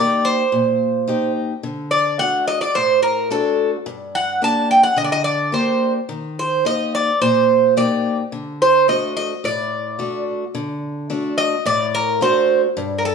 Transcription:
0.00 0.42 A#3 soft
0.00 0.42 D#4 soft
0.00 0.42 G4 soft
0.00 0.26 D5 medium
0.25 1.32 C5 medium
0.52 1.06 A#2 medium
1.07 1.52 A#3 soft
1.07 1.53 D#4 soft
1.07 1.53 G4 soft
1.63 2.17 D3 medium
1.91 2.19 D5 medium
2.19 2.64 A3 soft
2.19 2.64 D4 soft
2.19 2.64 F#4 soft
2.19 2.45 F#5 medium
2.48 2.61 D#5 medium
2.61 2.74 D5 medium
2.75 3.29 A2 medium
2.75 3.01 C5 medium
3.03 3.29 A#4 medium
3.30 3.75 A3 soft
3.30 3.75 D4 soft
3.30 3.76 F#4 soft
3.30 3.70 A4 medium
3.86 4.40 G2 medium
4.15 4.41 F#5 medium
4.42 4.86 A#3 soft
4.42 4.87 D4 soft
4.42 4.87 G4 medium
4.42 4.70 A5 loud
4.71 4.83 G5 medium
4.83 4.97 F#5 medium
4.96 5.51 D3 medium
4.96 5.04 D#5 medium
5.04 5.12 D5 medium
5.12 5.24 D#5 medium
5.24 5.51 D5 medium
5.52 5.97 A#3 soft
5.52 5.98 D4 soft
5.52 5.98 G4 soft
5.52 5.92 C5 medium
6.09 6.63 D#3 medium
6.39 6.66 C5 medium
6.65 7.09 A#3 soft
6.65 7.10 D#4 soft
6.65 7.10 G4 soft
6.65 6.94 D#5 medium
6.95 7.20 D5 medium
7.21 7.75 A#2 medium
7.21 7.73 C5 medium
7.77 8.21 A#3 soft
7.77 8.21 D#4 soft
7.77 8.22 G4 medium
7.77 8.16 D5 medium
8.32 8.86 D3 medium
8.62 8.87 C5 medium
8.88 9.33 A3 soft
8.88 9.33 D4 soft
8.88 9.33 F#4 soft
8.88 9.14 D#5 medium
9.17 9.45 D#5 medium
9.44 9.98 A2 medium
9.44 10.24 D5 medium
9.99 10.43 A3 soft
9.99 10.44 D4 soft
9.99 10.44 F#4 medium
10.55 11.08 D3 medium
11.10 11.54 A3 soft
11.10 11.55 D4 soft
11.10 11.55 F#4 soft
11.38 11.64 D#5 medium
11.65 12.19 A2 medium
11.65 11.92 D5 medium
11.95 12.20 A#4 medium
12.21 12.65 A3 soft
12.21 12.66 D4 soft
12.21 12.66 F#4 medium
12.21 12.60 C5 medium
12.77 13.15 G2 medium
12.98 13.05 A#4 medium
13.05 13.15 A4 medium

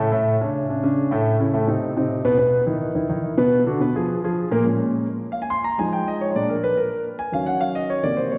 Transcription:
0.12 0.35 A2 medium
0.12 0.35 A3 medium
0.12 0.35 A4 medium
0.41 0.64 C#3 medium
0.41 0.64 C#4 medium
0.41 0.64 D4 medium
0.70 0.81 C#3 medium
0.70 0.81 C#4 medium
0.70 0.81 D4 medium
0.83 1.06 C#3 medium
0.83 1.06 C#4 medium
0.83 1.07 D4 medium
1.11 1.34 A2 medium
1.11 1.35 A3 medium
1.11 1.35 A4 medium
1.40 1.51 C#3 medium
1.40 1.51 C#4 medium
1.40 1.52 E4 medium
1.54 1.65 A2 medium
1.54 1.65 A3 medium
1.54 1.66 A4 medium
1.67 1.91 C3 medium
1.67 1.91 C4 medium
1.67 1.91 D#4 medium
1.97 2.20 C3 medium
1.97 2.20 C4 medium
1.97 2.20 D#4 medium
2.25 2.36 B2 loud
2.25 2.36 B3 loud
2.25 2.36 B4 medium
2.38 2.62 B2 medium
2.38 2.62 B3 medium
2.38 2.62 B4 medium
2.67 2.90 D#3 medium
2.67 2.90 D#4 medium
2.67 2.90 E4 medium
2.95 3.07 D#3 medium
2.95 3.07 D#4 medium
2.95 3.07 E4 medium
3.09 3.33 D#3 medium
3.09 3.33 D#4 medium
3.09 3.33 E4 medium
3.38 3.61 B2 medium
3.38 3.61 B3 medium
3.38 3.61 B4 medium
3.66 3.78 D3 medium
3.66 3.78 D4 medium
3.66 3.78 F#4 medium
3.81 3.92 B2 medium
3.81 3.92 B3 medium
3.81 3.93 B4 medium
3.95 4.18 F3 medium
3.95 4.18 F4 medium
3.95 4.18 G#4 medium
4.24 4.46 F3 medium
4.24 4.47 F4 medium
4.24 4.47 G#4 medium
4.51 4.63 A#2 medium
4.51 4.63 A#3 medium
4.51 4.63 A#4 medium
4.65 5.05 A#2 medium
4.65 5.06 G#3 medium
4.65 5.06 C#4 medium
5.32 5.41 F5 medium
5.42 5.50 G#5 medium
5.50 5.64 C6 loud
5.64 5.78 A#5 loud
5.78 6.32 F3 medium
5.78 6.32 G#3 medium
5.78 6.32 D#4 medium
5.78 5.92 G#5 medium
5.93 6.06 G5 medium
6.08 6.21 D#5 medium
6.21 6.30 C#5 medium
6.31 6.54 A#2 medium
6.31 6.33 C#5 medium
6.36 6.54 G#3 medium
6.36 6.54 D4 medium
6.36 6.49 D5 medium
6.49 6.63 A#4 medium
6.64 6.77 B4 medium
6.77 7.03 A#4 medium
7.19 7.33 G#5 medium
7.32 8.00 D#3 medium
7.32 8.00 F#3 soft
7.32 8.01 C#4 medium
7.32 7.47 F5 medium
7.46 7.61 F#5 medium
7.61 7.75 F5 medium
7.75 7.89 D#5 medium
7.90 8.04 C#5 medium
8.02 8.38 C3 medium
8.02 8.38 D#3 medium
8.02 8.38 A#3 medium
8.02 8.18 D5 medium
8.17 8.31 C5 medium
8.32 8.38 C#5 medium

